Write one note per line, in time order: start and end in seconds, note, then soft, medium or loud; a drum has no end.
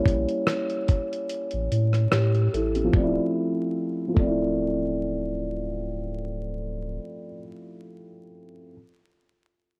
0.00 2.88 G3 medium
0.00 2.89 A#3 medium
0.00 2.09 C#4 medium
0.00 2.10 E4 medium
0.00 2.09 C#5 medium
0.06 0.26 A#1 medium
0.06 kick medium
0.06 closed hi-hat medium
0.29 closed hi-hat soft
0.47 cross-stick medium
0.47 closed hi-hat medium
0.70 closed hi-hat soft
0.88 kick medium
0.88 closed hi-hat medium
1.13 closed hi-hat soft
1.29 closed hi-hat medium
1.51 1.69 A1 medium
1.51 closed hi-hat soft
1.72 2.07 A2 medium
1.72 closed hi-hat medium
1.93 cross-stick soft
1.93 closed hi-hat soft
2.11 2.49 A2 loud
2.11 2.51 G4 medium
2.11 2.50 C#5 medium
2.11 cross-stick loud
2.11 closed hi-hat medium
2.35 closed hi-hat soft
2.54 2.90 A1 medium
2.54 2.75 E4 medium
2.54 2.75 A4 medium
2.54 closed hi-hat medium
2.75 3.14 C#4 soft
2.75 3.14 G4 soft
2.75 closed hi-hat soft
2.84 3.13 F3 medium
2.91 3.18 D1 medium
2.91 3.16 A3 medium
2.91 kick medium
2.96 3.20 C4 medium
2.96 3.19 D5 medium
3.03 3.23 E4 medium
4.08 7.27 F3 medium
4.14 6.99 D1 medium
4.14 7.33 A3 medium
4.14 kick medium
4.19 7.39 C4 medium
4.19 7.38 D5 medium
4.27 7.46 E4 medium